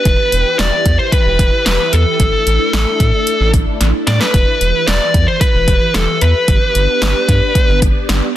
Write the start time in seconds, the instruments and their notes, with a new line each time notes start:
Already playing: lead electric guitar B4
0.05 analog synth bass E1, string machine E3 E4 G4 B4, kick, closed hi-hat
0.32 analog synth bass E1, closed hi-hat
0.59 analog synth bass E1, lead electric guitar D5, snare, closed hi-hat
0.86 analog synth bass E2, kick, closed hi-hat
0.99 lead electric guitar C5
1.12 lead electric guitar B4, kick, closed hi-hat
1.26 analog synth bass E1
1.39 analog synth bass E1, kick, closed hi-hat
1.66 analog synth bass E1, lead electric guitar B4, snare, closed hi-hat
1.93 analog synth bass E2, lead electric guitar A4, closed hi-hat
2.20 analog synth bass A1, string machine A3 D4, kick, closed hi-hat
2.46 analog synth bass A1, closed hi-hat
2.73 analog synth bass A1, snare, closed hi-hat
3.00 analog synth bass A2, kick, closed hi-hat
3.27 closed hi-hat
3.40 analog synth bass A1
3.54 analog synth bass A1, kick, closed hi-hat
3.80 analog synth bass A1, snare, closed hi-hat
4.07 analog synth bass A2, lead electric guitar D5, snare, closed hi-hat
4.21 lead electric guitar B4, snare
4.34 analog synth bass E1, string machine E3 E4 G4 B4, kick, closed hi-hat
4.61 analog synth bass E1, closed hi-hat
4.87 analog synth bass E1, lead electric guitar D5, snare, closed hi-hat
5.14 analog synth bass E2, kick, closed hi-hat
5.28 lead electric guitar C5
5.41 lead electric guitar B4, kick, closed hi-hat
5.54 analog synth bass E1
5.68 analog synth bass E1, kick, closed hi-hat
5.94 analog synth bass E1, lead electric guitar A4, snare, closed hi-hat
6.21 analog synth bass E2, lead electric guitar B4, closed hi-hat
6.48 analog synth bass G1, string machine B3 D4, kick, closed hi-hat
6.75 analog synth bass G1, closed hi-hat
7.02 analog synth bass G1, snare, closed hi-hat
7.29 analog synth bass G2, kick, closed hi-hat
7.55 kick, closed hi-hat
7.69 analog synth bass G1
7.82 analog synth bass G1, kick, closed hi-hat
8.09 analog synth bass G1, snare, closed hi-hat